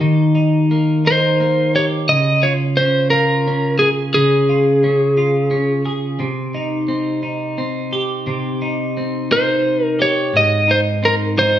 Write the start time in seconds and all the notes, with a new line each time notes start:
Already playing: A#3 D#4 G4
0.01 D#3
0.35 D#4
0.71 A#3
1.05 D#4 C5
1.40 A#3
1.75 G4 C#5
2.09 C#3 D#5
2.43 F4 C#5
2.77 C#4 C5
3.10 F4 A#4
3.47 C#4
3.79 G#4
4.14 C#3 G#4
4.49 F4
4.84 C#4
5.17 F4
5.51 C#4
5.86 G#4
6.20 C3
6.55 D#4
6.88 C4
7.23 D#4
7.58 C4
7.93 G4
8.27 C3
8.62 D#4
8.97 C4
9.31 D#4 C5
9.84 A#4
9.99 G4 C#5
10.33 G#2 D#5
10.68 D#4 C5
11.03 C4 A#4
11.37 D#4 C5